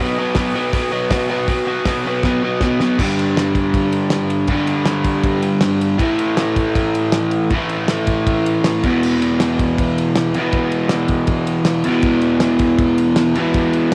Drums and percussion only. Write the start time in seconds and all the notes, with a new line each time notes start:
0.35 kick, snare, open hi-hat
0.73 kick, open hi-hat
1.11 kick, snare, open hi-hat
1.48 kick, open hi-hat
1.85 kick, snare, open hi-hat
2.23 kick, snare
2.61 kick, snare
2.80 snare
2.99 kick, crash
3.19 ride
3.37 snare, ride
3.55 kick, ride
3.74 kick, ride
3.93 ride
4.10 snare, ride
4.30 ride
4.48 kick, ride
4.67 ride
4.86 snare, ride
5.04 kick, ride
5.24 kick, ride
5.42 ride
5.61 snare, ride
5.81 ride
5.99 kick, ride
6.19 ride
6.37 snare, ride
6.56 kick, ride
6.75 kick, ride
6.95 ride
7.12 snare, ride
7.31 ride
7.50 kick, ride
7.69 ride
7.88 snare, ride
8.07 kick, ride
8.27 kick, ride
8.46 ride
8.64 snare, ride
8.84 kick, ride
9.03 crash
9.22 ride
9.40 snare, ride
9.59 kick, ride
9.79 kick, ride
9.98 ride
10.16 snare, ride
10.34 ride
10.52 kick, ride
10.72 ride
10.89 snare, ride
11.08 kick, ride
11.27 kick, ride
11.47 ride
11.65 snare, ride
11.84 ride
12.02 kick, ride
12.21 ride
12.40 snare, ride
12.59 kick, ride
12.79 kick, ride
12.98 ride
13.16 snare, ride
13.35 ride
13.54 kick, ride
13.73 ride